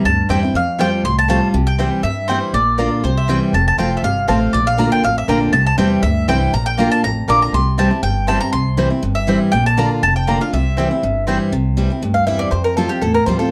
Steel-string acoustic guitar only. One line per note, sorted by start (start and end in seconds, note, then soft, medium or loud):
0.05 0.52 G2 medium
0.30 0.42 E3 medium
0.30 0.43 G3 medium
0.30 0.43 C4 medium
0.30 0.42 E4 loud
0.43 0.55 C4 soft
0.43 0.54 E4 medium
0.55 1.02 F2 medium
0.79 1.03 F3 medium
0.79 1.03 G3 medium
0.79 1.04 C4 loud
0.79 1.04 F4 loud
1.05 1.52 A2 medium
1.29 1.53 F3 medium
1.29 1.53 G3 medium
1.29 1.53 C4 medium
1.29 1.54 F4 loud
1.54 2.01 C3 medium
1.79 2.03 E3 medium
1.79 2.03 G3 medium
1.79 2.03 C4 medium
1.79 2.03 E4 medium
2.05 2.52 G2 medium
2.30 2.53 E3 medium
2.30 2.53 G3 medium
2.30 2.54 C4 medium
2.30 2.54 E4 medium
2.54 3.02 A#2 medium
2.78 3.02 D3 medium
2.78 3.03 A#3 medium
2.78 3.03 D4 medium
2.78 3.03 F4 medium
3.04 3.52 C3 medium
3.29 3.53 E3 medium
3.29 3.53 G3 medium
3.29 3.53 C4 medium
3.29 3.53 E4 medium
3.55 4.02 F2 loud
3.79 4.03 F3 medium
3.79 4.03 A3 medium
3.79 4.03 C4 medium
3.79 4.03 F4 medium
4.05 4.52 C3 medium
4.28 4.52 F3 medium
4.28 4.53 A3 medium
4.28 4.53 C4 medium
4.28 4.53 F4 medium
4.54 5.02 A#2 medium
4.78 5.02 D3 medium
4.78 5.03 A#3 medium
4.78 5.03 D4 medium
4.78 5.03 F4 loud
5.04 5.51 F2 medium
5.28 5.52 D3 medium
5.28 5.53 A#3 medium
5.28 5.53 D4 medium
5.28 5.53 F4 medium
5.53 6.01 C3 medium
5.78 6.02 E3 medium
5.78 6.02 G3 loud
5.78 6.02 C4 loud
5.78 6.03 E4 medium
6.03 6.51 G2 medium
6.28 6.52 E3 medium
6.28 6.53 G3 medium
6.28 6.52 C4 medium
6.28 6.53 E4 loud
6.54 7.01 A#2 medium
6.78 7.02 D3 medium
6.78 7.02 A#3 medium
6.78 7.03 D4 medium
6.78 7.03 F4 loud
7.04 7.52 F2 medium
7.28 7.52 D3 medium
7.28 7.53 A#3 medium
7.28 7.53 D4 medium
7.28 7.53 F4 medium
7.54 8.01 C3 medium
7.78 7.91 E3 medium
7.78 7.91 G3 medium
7.78 7.91 C4 loud
7.78 7.89 E4 medium
7.91 8.03 C4 medium
7.91 8.03 E4 medium
8.03 8.51 G2 medium
8.28 8.40 E3 medium
8.28 8.41 G3 medium
8.28 8.41 C4 medium
8.28 8.40 E4 medium
8.41 8.54 C4 medium
8.41 8.53 E4 medium
8.53 9.01 C3 loud
8.77 8.90 E3 medium
8.77 8.90 G3 medium
8.77 8.91 C4 medium
8.77 8.89 E4 medium
8.90 9.03 C4 soft
8.90 9.02 E4 medium
9.03 9.50 G2 medium
9.27 9.51 E3 medium
9.27 9.52 G3 medium
9.27 9.52 C4 medium
9.27 9.52 E4 medium
9.53 10.01 A#2 medium
9.77 10.02 D3 medium
9.77 10.02 A#3 medium
9.77 10.02 D4 medium
9.77 10.02 F4 loud
10.03 10.51 F2 medium
10.27 10.40 D3 medium
10.27 10.40 A#3 medium
10.27 10.41 D4 medium
10.27 10.39 F4 medium
10.41 10.53 D4 medium
10.41 10.52 F4 medium
10.53 11.01 C3 loud
10.78 10.90 E3 medium
10.78 10.91 G3 medium
10.78 10.91 C4 medium
10.78 10.90 E4 medium
10.91 11.03 C4 soft
10.91 11.02 E4 medium
11.03 11.51 G2 medium
11.27 11.51 E3 medium
11.27 11.52 G3 medium
11.27 11.52 C4 medium
11.27 11.52 E4 medium
11.52 12.00 C3 medium
11.77 11.90 E3 medium
11.77 11.90 G3 loud
11.77 11.90 C4 medium
11.77 11.89 E4 loud
11.90 12.02 C4 soft
11.90 12.02 E4 medium
12.02 12.50 G2 medium
12.27 12.51 E3 medium
12.27 12.51 G3 medium
12.27 12.51 C4 medium
12.27 12.51 E4 loud
12.52 13.00 F2 medium
12.77 12.89 F3 medium
12.77 12.90 G3 medium
12.77 12.90 C4 loud
12.77 12.89 F4 loud
12.90 13.02 C4 soft
12.90 13.01 F4 medium
13.02 13.50 A2 medium
13.27 13.40 F3 medium
13.27 13.40 G3 medium
13.27 13.40 C4 medium
13.27 13.39 F4 medium
13.40 13.51 C4 soft
13.40 13.51 F4 medium